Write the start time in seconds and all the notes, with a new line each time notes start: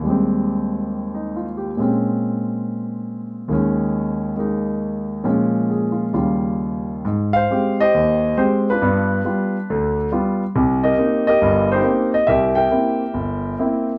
0.00 D#2 G3
0.06 G#3 C4
1.15 D#4
1.36 F4
1.57 G4
1.77 A#2 G#3 C4
1.82 C#4
3.48 D#2 D#3 G#3
3.53 C#4
4.36 G#3 A#3 D#4
5.24 A#2 F3 G#3 C#4
5.71 G#4
5.92 F4
6.13 D#2 C#3 G3 F4
7.05 G#2
7.33 C5 F5
7.51 G#3 C4 G4
7.80 G4 C5 D#5
7.95 D#2
8.38 G#3 C4 G4 C5
8.70 D4 F4 B4
8.82 G2 B3
9.24 G3 B3 F4
9.70 D2 D3
10.12 G3 B3 F4
10.55 C2 C3
10.84 G4 A#4 D#5
10.98 A#3 C4 D#4
11.27 G4 A#4 D#5
11.42 G1 G2
11.72 D#4 G4 C5
11.84 A#3 C4 D#4
12.14 D#5
12.27 C2 G4 A#4 E5
12.55 A#4 E5 G5
12.71 A#3 C4 E4
13.14 G1
13.59 A#3 C4 E4